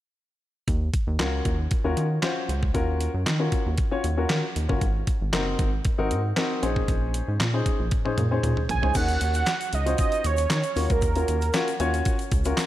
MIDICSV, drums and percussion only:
0, 0, Header, 1, 2, 480
1, 0, Start_track
1, 0, Tempo, 517241
1, 628, Time_signature, 4, 2, 24, 8
1, 11751, End_track
2, 0, Start_track
2, 0, Title_t, "Drums"
2, 628, Note_on_c, 9, 36, 99
2, 629, Note_on_c, 9, 42, 79
2, 721, Note_off_c, 9, 36, 0
2, 722, Note_off_c, 9, 42, 0
2, 868, Note_on_c, 9, 36, 89
2, 868, Note_on_c, 9, 42, 82
2, 961, Note_off_c, 9, 36, 0
2, 961, Note_off_c, 9, 42, 0
2, 1108, Note_on_c, 9, 38, 105
2, 1109, Note_on_c, 9, 42, 80
2, 1111, Note_on_c, 9, 39, 91
2, 1200, Note_off_c, 9, 38, 0
2, 1202, Note_off_c, 9, 42, 0
2, 1204, Note_off_c, 9, 39, 0
2, 1347, Note_on_c, 9, 42, 68
2, 1348, Note_on_c, 9, 36, 86
2, 1440, Note_off_c, 9, 42, 0
2, 1441, Note_off_c, 9, 36, 0
2, 1585, Note_on_c, 9, 42, 72
2, 1590, Note_on_c, 9, 36, 96
2, 1678, Note_off_c, 9, 42, 0
2, 1683, Note_off_c, 9, 36, 0
2, 1828, Note_on_c, 9, 42, 75
2, 1921, Note_off_c, 9, 42, 0
2, 2065, Note_on_c, 9, 38, 107
2, 2068, Note_on_c, 9, 42, 78
2, 2069, Note_on_c, 9, 39, 82
2, 2158, Note_off_c, 9, 38, 0
2, 2161, Note_off_c, 9, 42, 0
2, 2162, Note_off_c, 9, 39, 0
2, 2314, Note_on_c, 9, 42, 73
2, 2407, Note_off_c, 9, 42, 0
2, 2437, Note_on_c, 9, 36, 78
2, 2530, Note_off_c, 9, 36, 0
2, 2548, Note_on_c, 9, 36, 103
2, 2548, Note_on_c, 9, 42, 79
2, 2641, Note_off_c, 9, 36, 0
2, 2641, Note_off_c, 9, 42, 0
2, 2789, Note_on_c, 9, 42, 82
2, 2882, Note_off_c, 9, 42, 0
2, 3029, Note_on_c, 9, 38, 103
2, 3030, Note_on_c, 9, 42, 83
2, 3033, Note_on_c, 9, 39, 84
2, 3122, Note_off_c, 9, 38, 0
2, 3123, Note_off_c, 9, 42, 0
2, 3126, Note_off_c, 9, 39, 0
2, 3267, Note_on_c, 9, 42, 69
2, 3268, Note_on_c, 9, 36, 85
2, 3360, Note_off_c, 9, 42, 0
2, 3361, Note_off_c, 9, 36, 0
2, 3504, Note_on_c, 9, 42, 76
2, 3509, Note_on_c, 9, 36, 108
2, 3597, Note_off_c, 9, 42, 0
2, 3602, Note_off_c, 9, 36, 0
2, 3749, Note_on_c, 9, 42, 74
2, 3842, Note_off_c, 9, 42, 0
2, 3986, Note_on_c, 9, 38, 108
2, 3989, Note_on_c, 9, 42, 79
2, 3990, Note_on_c, 9, 39, 83
2, 4079, Note_off_c, 9, 38, 0
2, 4082, Note_off_c, 9, 42, 0
2, 4083, Note_off_c, 9, 39, 0
2, 4232, Note_on_c, 9, 42, 71
2, 4325, Note_off_c, 9, 42, 0
2, 4356, Note_on_c, 9, 36, 81
2, 4449, Note_off_c, 9, 36, 0
2, 4467, Note_on_c, 9, 36, 93
2, 4468, Note_on_c, 9, 42, 80
2, 4560, Note_off_c, 9, 36, 0
2, 4560, Note_off_c, 9, 42, 0
2, 4707, Note_on_c, 9, 42, 82
2, 4708, Note_on_c, 9, 36, 90
2, 4800, Note_off_c, 9, 42, 0
2, 4801, Note_off_c, 9, 36, 0
2, 4947, Note_on_c, 9, 38, 107
2, 4948, Note_on_c, 9, 42, 86
2, 4951, Note_on_c, 9, 39, 85
2, 5040, Note_off_c, 9, 38, 0
2, 5041, Note_off_c, 9, 42, 0
2, 5043, Note_off_c, 9, 39, 0
2, 5187, Note_on_c, 9, 42, 69
2, 5188, Note_on_c, 9, 36, 91
2, 5280, Note_off_c, 9, 42, 0
2, 5281, Note_off_c, 9, 36, 0
2, 5425, Note_on_c, 9, 42, 73
2, 5430, Note_on_c, 9, 36, 109
2, 5518, Note_off_c, 9, 42, 0
2, 5523, Note_off_c, 9, 36, 0
2, 5669, Note_on_c, 9, 42, 73
2, 5762, Note_off_c, 9, 42, 0
2, 5908, Note_on_c, 9, 38, 109
2, 5911, Note_on_c, 9, 42, 76
2, 5912, Note_on_c, 9, 39, 81
2, 6001, Note_off_c, 9, 38, 0
2, 6004, Note_off_c, 9, 42, 0
2, 6005, Note_off_c, 9, 39, 0
2, 6152, Note_on_c, 9, 42, 70
2, 6244, Note_off_c, 9, 42, 0
2, 6276, Note_on_c, 9, 36, 78
2, 6369, Note_off_c, 9, 36, 0
2, 6387, Note_on_c, 9, 36, 102
2, 6387, Note_on_c, 9, 42, 82
2, 6480, Note_off_c, 9, 36, 0
2, 6480, Note_off_c, 9, 42, 0
2, 6628, Note_on_c, 9, 42, 84
2, 6721, Note_off_c, 9, 42, 0
2, 6868, Note_on_c, 9, 38, 103
2, 6869, Note_on_c, 9, 42, 89
2, 6872, Note_on_c, 9, 39, 79
2, 6961, Note_off_c, 9, 38, 0
2, 6962, Note_off_c, 9, 42, 0
2, 6965, Note_off_c, 9, 39, 0
2, 7107, Note_on_c, 9, 36, 83
2, 7108, Note_on_c, 9, 42, 73
2, 7200, Note_off_c, 9, 36, 0
2, 7200, Note_off_c, 9, 42, 0
2, 7344, Note_on_c, 9, 42, 67
2, 7347, Note_on_c, 9, 48, 48
2, 7348, Note_on_c, 9, 36, 101
2, 7436, Note_off_c, 9, 42, 0
2, 7440, Note_off_c, 9, 48, 0
2, 7441, Note_off_c, 9, 36, 0
2, 7475, Note_on_c, 9, 48, 51
2, 7568, Note_off_c, 9, 48, 0
2, 7588, Note_on_c, 9, 42, 74
2, 7588, Note_on_c, 9, 47, 65
2, 7680, Note_off_c, 9, 47, 0
2, 7681, Note_off_c, 9, 42, 0
2, 7827, Note_on_c, 9, 45, 73
2, 7830, Note_on_c, 9, 42, 81
2, 7920, Note_off_c, 9, 45, 0
2, 7922, Note_off_c, 9, 42, 0
2, 7954, Note_on_c, 9, 45, 68
2, 8046, Note_off_c, 9, 45, 0
2, 8067, Note_on_c, 9, 43, 89
2, 8071, Note_on_c, 9, 42, 67
2, 8159, Note_off_c, 9, 43, 0
2, 8164, Note_off_c, 9, 42, 0
2, 8194, Note_on_c, 9, 43, 82
2, 8287, Note_off_c, 9, 43, 0
2, 8299, Note_on_c, 9, 82, 81
2, 8305, Note_on_c, 9, 42, 85
2, 8305, Note_on_c, 9, 49, 84
2, 8306, Note_on_c, 9, 36, 101
2, 8392, Note_off_c, 9, 82, 0
2, 8398, Note_off_c, 9, 42, 0
2, 8398, Note_off_c, 9, 49, 0
2, 8399, Note_off_c, 9, 36, 0
2, 8430, Note_on_c, 9, 42, 55
2, 8441, Note_on_c, 9, 82, 47
2, 8523, Note_off_c, 9, 42, 0
2, 8534, Note_off_c, 9, 82, 0
2, 8544, Note_on_c, 9, 82, 49
2, 8546, Note_on_c, 9, 42, 86
2, 8637, Note_off_c, 9, 82, 0
2, 8639, Note_off_c, 9, 42, 0
2, 8667, Note_on_c, 9, 82, 57
2, 8677, Note_on_c, 9, 42, 50
2, 8760, Note_off_c, 9, 82, 0
2, 8769, Note_off_c, 9, 42, 0
2, 8781, Note_on_c, 9, 82, 78
2, 8786, Note_on_c, 9, 38, 105
2, 8787, Note_on_c, 9, 42, 91
2, 8790, Note_on_c, 9, 39, 83
2, 8874, Note_off_c, 9, 82, 0
2, 8879, Note_off_c, 9, 38, 0
2, 8880, Note_off_c, 9, 42, 0
2, 8883, Note_off_c, 9, 39, 0
2, 8916, Note_on_c, 9, 42, 51
2, 8920, Note_on_c, 9, 82, 54
2, 9008, Note_off_c, 9, 42, 0
2, 9013, Note_off_c, 9, 82, 0
2, 9026, Note_on_c, 9, 42, 73
2, 9031, Note_on_c, 9, 82, 50
2, 9119, Note_off_c, 9, 42, 0
2, 9124, Note_off_c, 9, 82, 0
2, 9155, Note_on_c, 9, 42, 46
2, 9159, Note_on_c, 9, 82, 53
2, 9248, Note_off_c, 9, 42, 0
2, 9252, Note_off_c, 9, 82, 0
2, 9264, Note_on_c, 9, 42, 72
2, 9266, Note_on_c, 9, 82, 68
2, 9269, Note_on_c, 9, 36, 109
2, 9356, Note_off_c, 9, 42, 0
2, 9359, Note_off_c, 9, 82, 0
2, 9361, Note_off_c, 9, 36, 0
2, 9391, Note_on_c, 9, 42, 47
2, 9403, Note_on_c, 9, 82, 51
2, 9484, Note_off_c, 9, 42, 0
2, 9496, Note_off_c, 9, 82, 0
2, 9507, Note_on_c, 9, 42, 73
2, 9509, Note_on_c, 9, 82, 55
2, 9599, Note_off_c, 9, 42, 0
2, 9601, Note_off_c, 9, 82, 0
2, 9621, Note_on_c, 9, 82, 58
2, 9635, Note_on_c, 9, 42, 58
2, 9714, Note_off_c, 9, 82, 0
2, 9728, Note_off_c, 9, 42, 0
2, 9745, Note_on_c, 9, 38, 105
2, 9746, Note_on_c, 9, 82, 67
2, 9748, Note_on_c, 9, 42, 89
2, 9749, Note_on_c, 9, 39, 90
2, 9838, Note_off_c, 9, 38, 0
2, 9839, Note_off_c, 9, 82, 0
2, 9841, Note_off_c, 9, 39, 0
2, 9841, Note_off_c, 9, 42, 0
2, 9867, Note_on_c, 9, 82, 52
2, 9870, Note_on_c, 9, 42, 47
2, 9960, Note_off_c, 9, 82, 0
2, 9963, Note_off_c, 9, 42, 0
2, 9986, Note_on_c, 9, 82, 46
2, 9991, Note_on_c, 9, 46, 77
2, 10079, Note_off_c, 9, 82, 0
2, 10084, Note_off_c, 9, 46, 0
2, 10114, Note_on_c, 9, 42, 54
2, 10115, Note_on_c, 9, 82, 48
2, 10117, Note_on_c, 9, 36, 84
2, 10207, Note_off_c, 9, 42, 0
2, 10208, Note_off_c, 9, 82, 0
2, 10209, Note_off_c, 9, 36, 0
2, 10224, Note_on_c, 9, 82, 77
2, 10228, Note_on_c, 9, 36, 108
2, 10228, Note_on_c, 9, 42, 83
2, 10317, Note_off_c, 9, 82, 0
2, 10321, Note_off_c, 9, 36, 0
2, 10321, Note_off_c, 9, 42, 0
2, 10352, Note_on_c, 9, 42, 53
2, 10363, Note_on_c, 9, 82, 47
2, 10445, Note_off_c, 9, 42, 0
2, 10456, Note_off_c, 9, 82, 0
2, 10469, Note_on_c, 9, 42, 81
2, 10470, Note_on_c, 9, 82, 49
2, 10562, Note_off_c, 9, 42, 0
2, 10562, Note_off_c, 9, 82, 0
2, 10591, Note_on_c, 9, 82, 51
2, 10600, Note_on_c, 9, 42, 53
2, 10684, Note_off_c, 9, 82, 0
2, 10692, Note_off_c, 9, 42, 0
2, 10704, Note_on_c, 9, 82, 81
2, 10710, Note_on_c, 9, 38, 118
2, 10712, Note_on_c, 9, 42, 92
2, 10714, Note_on_c, 9, 39, 90
2, 10797, Note_off_c, 9, 82, 0
2, 10803, Note_off_c, 9, 38, 0
2, 10804, Note_off_c, 9, 42, 0
2, 10807, Note_off_c, 9, 39, 0
2, 10838, Note_on_c, 9, 42, 51
2, 10844, Note_on_c, 9, 82, 54
2, 10930, Note_off_c, 9, 42, 0
2, 10937, Note_off_c, 9, 82, 0
2, 10949, Note_on_c, 9, 42, 73
2, 10955, Note_on_c, 9, 82, 51
2, 11042, Note_off_c, 9, 42, 0
2, 11048, Note_off_c, 9, 82, 0
2, 11079, Note_on_c, 9, 42, 50
2, 11085, Note_on_c, 9, 82, 50
2, 11172, Note_off_c, 9, 42, 0
2, 11178, Note_off_c, 9, 82, 0
2, 11186, Note_on_c, 9, 42, 79
2, 11192, Note_on_c, 9, 36, 108
2, 11193, Note_on_c, 9, 82, 63
2, 11279, Note_off_c, 9, 42, 0
2, 11284, Note_off_c, 9, 36, 0
2, 11285, Note_off_c, 9, 82, 0
2, 11312, Note_on_c, 9, 42, 46
2, 11329, Note_on_c, 9, 82, 48
2, 11405, Note_off_c, 9, 42, 0
2, 11422, Note_off_c, 9, 82, 0
2, 11429, Note_on_c, 9, 42, 73
2, 11431, Note_on_c, 9, 36, 95
2, 11433, Note_on_c, 9, 82, 53
2, 11521, Note_off_c, 9, 42, 0
2, 11524, Note_off_c, 9, 36, 0
2, 11526, Note_off_c, 9, 82, 0
2, 11548, Note_on_c, 9, 82, 57
2, 11558, Note_on_c, 9, 42, 66
2, 11641, Note_off_c, 9, 82, 0
2, 11651, Note_off_c, 9, 42, 0
2, 11667, Note_on_c, 9, 38, 105
2, 11670, Note_on_c, 9, 42, 82
2, 11671, Note_on_c, 9, 39, 81
2, 11674, Note_on_c, 9, 82, 69
2, 11751, Note_off_c, 9, 38, 0
2, 11751, Note_off_c, 9, 39, 0
2, 11751, Note_off_c, 9, 42, 0
2, 11751, Note_off_c, 9, 82, 0
2, 11751, End_track
0, 0, End_of_file